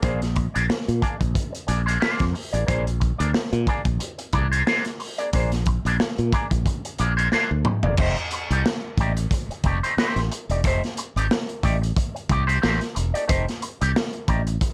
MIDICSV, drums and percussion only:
0, 0, Header, 1, 2, 480
1, 0, Start_track
1, 0, Tempo, 662983
1, 23, Time_signature, 4, 2, 24, 8
1, 10668, End_track
2, 0, Start_track
2, 0, Title_t, "Drums"
2, 19, Note_on_c, 9, 42, 102
2, 21, Note_on_c, 9, 36, 127
2, 91, Note_off_c, 9, 42, 0
2, 94, Note_off_c, 9, 36, 0
2, 159, Note_on_c, 9, 42, 50
2, 166, Note_on_c, 9, 38, 34
2, 232, Note_off_c, 9, 42, 0
2, 238, Note_off_c, 9, 38, 0
2, 259, Note_on_c, 9, 42, 64
2, 264, Note_on_c, 9, 36, 91
2, 331, Note_off_c, 9, 42, 0
2, 336, Note_off_c, 9, 36, 0
2, 402, Note_on_c, 9, 42, 50
2, 475, Note_off_c, 9, 42, 0
2, 506, Note_on_c, 9, 38, 122
2, 578, Note_off_c, 9, 38, 0
2, 641, Note_on_c, 9, 42, 46
2, 713, Note_off_c, 9, 42, 0
2, 741, Note_on_c, 9, 36, 96
2, 747, Note_on_c, 9, 42, 72
2, 813, Note_off_c, 9, 36, 0
2, 819, Note_off_c, 9, 42, 0
2, 874, Note_on_c, 9, 36, 90
2, 881, Note_on_c, 9, 42, 56
2, 946, Note_off_c, 9, 36, 0
2, 953, Note_off_c, 9, 42, 0
2, 979, Note_on_c, 9, 36, 88
2, 983, Note_on_c, 9, 42, 89
2, 1052, Note_off_c, 9, 36, 0
2, 1055, Note_off_c, 9, 42, 0
2, 1120, Note_on_c, 9, 42, 56
2, 1192, Note_off_c, 9, 42, 0
2, 1217, Note_on_c, 9, 42, 76
2, 1289, Note_off_c, 9, 42, 0
2, 1364, Note_on_c, 9, 42, 51
2, 1436, Note_off_c, 9, 42, 0
2, 1464, Note_on_c, 9, 38, 118
2, 1537, Note_off_c, 9, 38, 0
2, 1588, Note_on_c, 9, 42, 45
2, 1594, Note_on_c, 9, 36, 80
2, 1597, Note_on_c, 9, 38, 38
2, 1660, Note_off_c, 9, 42, 0
2, 1667, Note_off_c, 9, 36, 0
2, 1669, Note_off_c, 9, 38, 0
2, 1702, Note_on_c, 9, 46, 77
2, 1774, Note_off_c, 9, 46, 0
2, 1838, Note_on_c, 9, 42, 53
2, 1910, Note_off_c, 9, 42, 0
2, 1943, Note_on_c, 9, 36, 127
2, 1943, Note_on_c, 9, 42, 100
2, 2015, Note_off_c, 9, 36, 0
2, 2015, Note_off_c, 9, 42, 0
2, 2079, Note_on_c, 9, 42, 53
2, 2151, Note_off_c, 9, 42, 0
2, 2181, Note_on_c, 9, 42, 72
2, 2184, Note_on_c, 9, 36, 90
2, 2253, Note_off_c, 9, 42, 0
2, 2256, Note_off_c, 9, 36, 0
2, 2318, Note_on_c, 9, 42, 58
2, 2391, Note_off_c, 9, 42, 0
2, 2421, Note_on_c, 9, 38, 115
2, 2494, Note_off_c, 9, 38, 0
2, 2553, Note_on_c, 9, 42, 42
2, 2626, Note_off_c, 9, 42, 0
2, 2657, Note_on_c, 9, 36, 100
2, 2658, Note_on_c, 9, 42, 71
2, 2730, Note_off_c, 9, 36, 0
2, 2730, Note_off_c, 9, 42, 0
2, 2788, Note_on_c, 9, 42, 54
2, 2789, Note_on_c, 9, 36, 93
2, 2860, Note_off_c, 9, 42, 0
2, 2862, Note_off_c, 9, 36, 0
2, 2898, Note_on_c, 9, 42, 91
2, 2971, Note_off_c, 9, 42, 0
2, 3031, Note_on_c, 9, 42, 63
2, 3103, Note_off_c, 9, 42, 0
2, 3132, Note_on_c, 9, 42, 70
2, 3137, Note_on_c, 9, 36, 88
2, 3205, Note_off_c, 9, 42, 0
2, 3209, Note_off_c, 9, 36, 0
2, 3277, Note_on_c, 9, 42, 50
2, 3349, Note_off_c, 9, 42, 0
2, 3382, Note_on_c, 9, 38, 109
2, 3454, Note_off_c, 9, 38, 0
2, 3509, Note_on_c, 9, 42, 51
2, 3518, Note_on_c, 9, 38, 36
2, 3582, Note_off_c, 9, 42, 0
2, 3591, Note_off_c, 9, 38, 0
2, 3619, Note_on_c, 9, 46, 72
2, 3692, Note_off_c, 9, 46, 0
2, 3755, Note_on_c, 9, 42, 52
2, 3827, Note_off_c, 9, 42, 0
2, 3859, Note_on_c, 9, 42, 97
2, 3862, Note_on_c, 9, 36, 127
2, 3931, Note_off_c, 9, 42, 0
2, 3934, Note_off_c, 9, 36, 0
2, 3995, Note_on_c, 9, 42, 52
2, 4001, Note_on_c, 9, 38, 34
2, 4068, Note_off_c, 9, 42, 0
2, 4074, Note_off_c, 9, 38, 0
2, 4095, Note_on_c, 9, 42, 62
2, 4103, Note_on_c, 9, 36, 100
2, 4167, Note_off_c, 9, 42, 0
2, 4175, Note_off_c, 9, 36, 0
2, 4244, Note_on_c, 9, 42, 55
2, 4317, Note_off_c, 9, 42, 0
2, 4344, Note_on_c, 9, 38, 113
2, 4416, Note_off_c, 9, 38, 0
2, 4476, Note_on_c, 9, 42, 44
2, 4549, Note_off_c, 9, 42, 0
2, 4579, Note_on_c, 9, 36, 99
2, 4583, Note_on_c, 9, 42, 72
2, 4652, Note_off_c, 9, 36, 0
2, 4656, Note_off_c, 9, 42, 0
2, 4714, Note_on_c, 9, 36, 91
2, 4720, Note_on_c, 9, 42, 57
2, 4786, Note_off_c, 9, 36, 0
2, 4793, Note_off_c, 9, 42, 0
2, 4819, Note_on_c, 9, 36, 91
2, 4826, Note_on_c, 9, 42, 84
2, 4892, Note_off_c, 9, 36, 0
2, 4898, Note_off_c, 9, 42, 0
2, 4959, Note_on_c, 9, 42, 58
2, 5031, Note_off_c, 9, 42, 0
2, 5057, Note_on_c, 9, 42, 74
2, 5129, Note_off_c, 9, 42, 0
2, 5202, Note_on_c, 9, 42, 46
2, 5274, Note_off_c, 9, 42, 0
2, 5299, Note_on_c, 9, 38, 59
2, 5371, Note_off_c, 9, 38, 0
2, 5537, Note_on_c, 9, 45, 95
2, 5609, Note_off_c, 9, 45, 0
2, 5669, Note_on_c, 9, 43, 98
2, 5741, Note_off_c, 9, 43, 0
2, 5772, Note_on_c, 9, 49, 109
2, 5779, Note_on_c, 9, 36, 127
2, 5844, Note_off_c, 9, 49, 0
2, 5851, Note_off_c, 9, 36, 0
2, 5912, Note_on_c, 9, 42, 36
2, 5984, Note_off_c, 9, 42, 0
2, 6015, Note_on_c, 9, 42, 67
2, 6087, Note_off_c, 9, 42, 0
2, 6160, Note_on_c, 9, 42, 52
2, 6233, Note_off_c, 9, 42, 0
2, 6268, Note_on_c, 9, 38, 124
2, 6340, Note_off_c, 9, 38, 0
2, 6499, Note_on_c, 9, 36, 99
2, 6504, Note_on_c, 9, 42, 80
2, 6571, Note_off_c, 9, 36, 0
2, 6576, Note_off_c, 9, 42, 0
2, 6637, Note_on_c, 9, 42, 62
2, 6709, Note_off_c, 9, 42, 0
2, 6739, Note_on_c, 9, 36, 88
2, 6744, Note_on_c, 9, 42, 91
2, 6812, Note_off_c, 9, 36, 0
2, 6816, Note_off_c, 9, 42, 0
2, 6884, Note_on_c, 9, 42, 36
2, 6957, Note_off_c, 9, 42, 0
2, 6976, Note_on_c, 9, 42, 68
2, 6978, Note_on_c, 9, 36, 92
2, 7049, Note_off_c, 9, 42, 0
2, 7051, Note_off_c, 9, 36, 0
2, 7123, Note_on_c, 9, 42, 50
2, 7196, Note_off_c, 9, 42, 0
2, 7229, Note_on_c, 9, 38, 127
2, 7301, Note_off_c, 9, 38, 0
2, 7358, Note_on_c, 9, 42, 38
2, 7367, Note_on_c, 9, 38, 39
2, 7430, Note_off_c, 9, 42, 0
2, 7439, Note_off_c, 9, 38, 0
2, 7468, Note_on_c, 9, 42, 76
2, 7541, Note_off_c, 9, 42, 0
2, 7601, Note_on_c, 9, 42, 50
2, 7674, Note_off_c, 9, 42, 0
2, 7704, Note_on_c, 9, 36, 127
2, 7706, Note_on_c, 9, 42, 102
2, 7776, Note_off_c, 9, 36, 0
2, 7778, Note_off_c, 9, 42, 0
2, 7846, Note_on_c, 9, 42, 34
2, 7852, Note_on_c, 9, 38, 35
2, 7918, Note_off_c, 9, 42, 0
2, 7925, Note_off_c, 9, 38, 0
2, 7944, Note_on_c, 9, 42, 69
2, 8016, Note_off_c, 9, 42, 0
2, 8089, Note_on_c, 9, 42, 55
2, 8161, Note_off_c, 9, 42, 0
2, 8189, Note_on_c, 9, 38, 114
2, 8261, Note_off_c, 9, 38, 0
2, 8319, Note_on_c, 9, 42, 36
2, 8391, Note_off_c, 9, 42, 0
2, 8423, Note_on_c, 9, 36, 93
2, 8429, Note_on_c, 9, 42, 80
2, 8495, Note_off_c, 9, 36, 0
2, 8502, Note_off_c, 9, 42, 0
2, 8568, Note_on_c, 9, 42, 51
2, 8640, Note_off_c, 9, 42, 0
2, 8663, Note_on_c, 9, 36, 105
2, 8669, Note_on_c, 9, 42, 87
2, 8736, Note_off_c, 9, 36, 0
2, 8742, Note_off_c, 9, 42, 0
2, 8806, Note_on_c, 9, 42, 41
2, 8878, Note_off_c, 9, 42, 0
2, 8901, Note_on_c, 9, 42, 76
2, 8902, Note_on_c, 9, 36, 99
2, 8973, Note_off_c, 9, 42, 0
2, 8974, Note_off_c, 9, 36, 0
2, 9044, Note_on_c, 9, 42, 54
2, 9116, Note_off_c, 9, 42, 0
2, 9148, Note_on_c, 9, 38, 127
2, 9220, Note_off_c, 9, 38, 0
2, 9275, Note_on_c, 9, 42, 40
2, 9285, Note_on_c, 9, 38, 36
2, 9348, Note_off_c, 9, 42, 0
2, 9357, Note_off_c, 9, 38, 0
2, 9384, Note_on_c, 9, 42, 78
2, 9457, Note_off_c, 9, 42, 0
2, 9522, Note_on_c, 9, 42, 50
2, 9594, Note_off_c, 9, 42, 0
2, 9623, Note_on_c, 9, 42, 107
2, 9625, Note_on_c, 9, 36, 127
2, 9696, Note_off_c, 9, 42, 0
2, 9697, Note_off_c, 9, 36, 0
2, 9763, Note_on_c, 9, 42, 42
2, 9769, Note_on_c, 9, 38, 35
2, 9835, Note_off_c, 9, 42, 0
2, 9842, Note_off_c, 9, 38, 0
2, 9862, Note_on_c, 9, 42, 69
2, 9935, Note_off_c, 9, 42, 0
2, 10002, Note_on_c, 9, 42, 56
2, 10074, Note_off_c, 9, 42, 0
2, 10109, Note_on_c, 9, 38, 127
2, 10182, Note_off_c, 9, 38, 0
2, 10231, Note_on_c, 9, 42, 35
2, 10303, Note_off_c, 9, 42, 0
2, 10339, Note_on_c, 9, 36, 104
2, 10339, Note_on_c, 9, 42, 78
2, 10411, Note_off_c, 9, 42, 0
2, 10412, Note_off_c, 9, 36, 0
2, 10475, Note_on_c, 9, 42, 54
2, 10547, Note_off_c, 9, 42, 0
2, 10579, Note_on_c, 9, 36, 97
2, 10581, Note_on_c, 9, 42, 92
2, 10651, Note_off_c, 9, 36, 0
2, 10654, Note_off_c, 9, 42, 0
2, 10668, End_track
0, 0, End_of_file